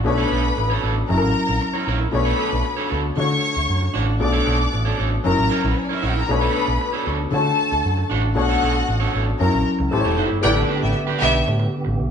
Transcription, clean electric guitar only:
0.05 muted clean electric guitar stroke soft
0.18 0.29 D4 medium
0.18 0.30 A4 medium
0.18 0.31 C#5 medium
0.30 0.46 D4 medium
0.30 0.44 A4 medium
0.30 0.43 C#5 medium
0.44 muted clean electric guitar stroke soft
0.57 muted clean electric guitar stroke soft
0.70 0.81 D4 medium
0.70 0.82 A4 medium
0.70 0.83 C#5 medium
0.82 0.98 D4 medium
0.82 0.96 A4 medium
0.82 0.95 C#5 medium
0.96 muted clean electric guitar stroke soft
1.09 muted clean electric guitar stroke soft
1.22 muted clean electric guitar stroke soft
1.47 muted clean electric guitar stroke soft
1.61 muted clean electric guitar stroke soft
1.74 1.85 E4 medium
1.74 1.87 A#4 medium
1.74 1.88 C#5 medium
1.87 2.06 E4 medium
1.87 2.00 A#4 medium
1.87 1.99 C#5 medium
2.00 muted clean electric guitar stroke soft
2.13 muted clean electric guitar stroke soft
2.25 2.37 D4 medium
2.25 2.38 A4 medium
2.25 2.39 C#5 medium
2.39 2.54 D4 medium
2.39 2.52 A4 medium
2.39 2.51 C#5 medium
2.52 muted clean electric guitar stroke medium
2.64 muted clean electric guitar stroke soft
2.77 2.88 D4 medium
2.77 2.89 A4 medium
2.77 2.90 C#5 medium
2.89 3.05 D4 medium
2.89 3.03 A4 medium
2.89 3.02 C#5 medium
3.03 muted clean electric guitar stroke soft
3.16 muted clean electric guitar stroke soft
3.29 muted clean electric guitar stroke soft
3.55 muted clean electric guitar stroke soft
3.81 muted clean electric guitar stroke soft
3.94 4.14 D4 medium
3.94 4.07 F#4 medium
3.94 4.06 C#5 medium
4.07 muted clean electric guitar stroke soft
4.20 muted clean electric guitar stroke soft
4.33 4.45 D4 medium
4.33 4.45 A4 medium
4.33 4.47 C#5 medium
4.46 4.61 D4 medium
4.46 4.59 A4 medium
4.46 4.58 C#5 medium
4.59 muted clean electric guitar stroke medium
4.72 muted clean electric guitar stroke soft
4.85 4.97 D4 medium
4.85 4.98 A4 medium
4.85 4.99 C#5 medium
4.98 5.14 D4 medium
4.98 5.11 A4 medium
4.98 5.10 C#5 medium
5.11 muted clean electric guitar stroke soft
5.24 muted clean electric guitar stroke soft
5.37 muted clean electric guitar stroke medium
5.50 5.64 E4 medium
5.50 5.63 A#4 medium
5.50 5.62 C#5 loud
5.63 5.75 E4 soft
5.63 5.75 A#4 medium
5.63 5.76 C#5 medium
5.76 muted clean electric guitar stroke soft
5.89 6.01 E4 medium
5.89 6.02 A#4 medium
5.89 6.03 C#5 medium
6.02 6.22 E4 medium
6.02 6.16 A#4 medium
6.02 6.15 C#5 medium
6.16 muted clean electric guitar stroke soft
6.29 muted clean electric guitar stroke soft
6.41 6.53 D4 medium
6.41 6.53 A4 medium
6.41 6.54 C#5 medium
6.54 6.69 D4 medium
6.54 6.67 A4 medium
6.54 6.66 C#5 medium
6.67 muted clean electric guitar stroke soft
6.80 muted clean electric guitar stroke soft
6.93 7.05 D4 medium
6.93 7.06 A4 medium
6.93 7.07 C#5 medium
7.06 7.21 D4 medium
7.06 7.19 A4 medium
7.06 7.17 C#5 medium
7.19 muted clean electric guitar stroke soft
7.32 muted clean electric guitar stroke soft
7.45 muted clean electric guitar stroke soft
7.71 muted clean electric guitar stroke soft
7.97 muted clean electric guitar stroke soft
8.10 8.29 D4 medium
8.10 8.23 F#4 loud
8.10 8.22 C#5 medium
8.23 muted clean electric guitar stroke soft
8.36 muted clean electric guitar stroke soft
8.49 8.61 D4 medium
8.49 8.62 A4 medium
8.49 8.63 C#5 medium
8.62 8.77 D4 medium
8.62 8.76 A4 medium
8.62 8.74 C#5 medium
8.75 muted clean electric guitar stroke medium
8.87 muted clean electric guitar stroke soft
9.00 9.12 D4 medium
9.00 9.13 A4 medium
9.00 9.14 C#5 medium
9.13 9.29 D4 medium
9.13 9.27 A4 medium
9.13 9.25 C#5 medium
9.27 muted clean electric guitar stroke soft
9.40 muted clean electric guitar stroke soft
9.53 muted clean electric guitar stroke medium
9.79 muted clean electric guitar stroke soft
9.92 muted clean electric guitar stroke soft
10.04 10.16 E4 soft
10.04 10.16 G4 medium
10.04 10.17 C#5 medium
10.17 10.37 E4 medium
10.17 10.30 G4 medium
10.17 10.28 C#5 medium
10.29 muted clean electric guitar stroke soft
10.43 muted clean electric guitar stroke soft
10.55 10.67 D4 medium
10.55 10.68 G4 medium
10.55 10.69 B4 medium
10.69 10.84 D4 medium
10.69 10.82 G4 medium
10.69 10.81 B4 medium
10.82 muted clean electric guitar stroke medium
10.94 muted clean electric guitar stroke soft
11.07 11.19 D4 medium
11.07 11.20 G4 medium
11.07 11.21 B4 medium
11.20 11.36 D4 medium
11.20 11.34 G4 medium
11.20 11.32 B4 medium
11.33 muted clean electric guitar stroke soft
11.47 muted clean electric guitar stroke medium
11.60 muted clean electric guitar stroke medium
11.85 muted clean electric guitar stroke medium

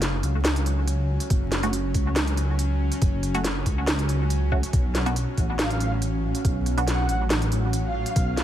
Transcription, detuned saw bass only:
0.00 0.22 F#1 loud
0.23 1.19 C#2 medium
1.30 1.62 F#1 loud
1.63 1.93 F#1 loud
1.95 2.90 C#2 medium
3.02 3.33 F#1 loud
3.35 3.65 F#1 loud
3.66 4.62 C#2 medium
4.73 5.26 B1 loud
5.38 6.33 A1 medium
6.45 6.76 B1 loud
6.77 7.08 B1 loud
7.09 8.05 A1 medium
8.16 8.44 B1 loud

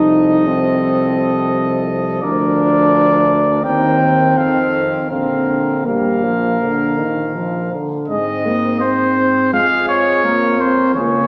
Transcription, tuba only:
0.00 2.19 C2 medium
2.23 3.66 D2 medium
3.64 4.38 D#2 medium
4.37 4.94 F2 medium
5.11 7.72 A#1 soft
8.09 9.54 G#2 medium
9.53 10.97 F2 medium
10.96 11.27 C#2 medium

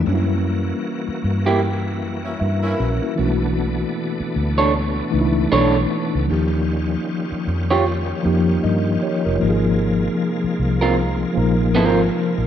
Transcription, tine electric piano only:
0.04 1.42 G3 medium
0.04 1.43 A#3 medium
0.04 1.44 C#4 medium
0.08 0.15 D4 medium
0.15 1.48 E4 medium
2.40 3.13 E5 medium
2.63 2.78 E4 medium
2.63 2.78 A#4 medium
2.79 3.01 C#4 medium
2.79 3.01 F#4 medium
3.02 3.39 A#3 soft
3.02 3.39 E4 medium
3.16 4.54 E3 medium
3.16 4.54 A3 medium
3.16 3.25 C#4 medium
3.16 4.56 F#4 medium
3.25 4.58 D4 medium
5.10 6.15 E3 medium
5.10 6.16 A3 medium
5.10 6.16 D4 medium
5.10 5.21 D#4 medium
5.21 6.20 E4 loud
6.28 7.66 F3 medium
6.28 7.66 A#3 medium
6.28 7.67 D#4 medium
6.28 7.68 G4 medium
8.23 9.27 F3 medium
8.23 9.28 A#3 medium
8.23 9.28 D#4 medium
8.23 8.64 G4 loud
8.63 9.00 A#4 medium
8.63 9.00 D#5 medium
9.03 9.24 G4 medium
9.03 9.24 C#5 medium
9.26 9.63 F4 medium
9.26 9.62 A#4 medium
9.39 10.77 F3 medium
9.39 10.78 A#3 medium
9.39 10.79 D#4 medium
9.39 9.49 G4 medium
9.49 10.82 G#4 medium
11.34 12.38 F3 medium
11.34 12.39 A#3 medium
11.34 12.40 D#4 medium
11.34 12.40 A#4 loud

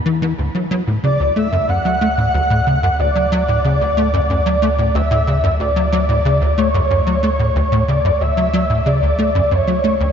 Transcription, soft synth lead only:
1.04 1.34 D5 loud
1.37 1.71 E5 loud
1.69 3.01 F#5 loud
3.00 4.95 D5 loud
4.95 5.56 E5 loud
5.61 6.60 D5 loud
6.58 7.90 C#5 loud
7.89 8.23 D5 medium
8.21 8.88 E5 loud
8.87 9.53 D5 medium
9.52 10.12 C#5 medium

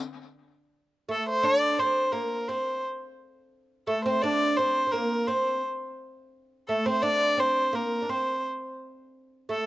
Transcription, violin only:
1.12 1.27 A4 medium
1.29 1.46 C5 medium
1.45 1.81 D5 loud
1.79 2.13 C5 medium
2.12 2.50 A#4 medium
2.48 2.84 C5 medium
3.88 4.04 A4 medium
4.04 4.23 C5 medium
4.22 4.58 D5 loud
4.56 4.93 C5 medium
4.91 5.29 A#4 medium
5.27 5.63 C5 medium
6.68 6.87 A4 medium
6.86 7.03 C5 medium
7.02 7.41 D5 loud
7.40 7.76 C5 medium
7.74 8.11 A#4 medium
8.10 8.44 C5 medium
9.51 9.66 A4 medium

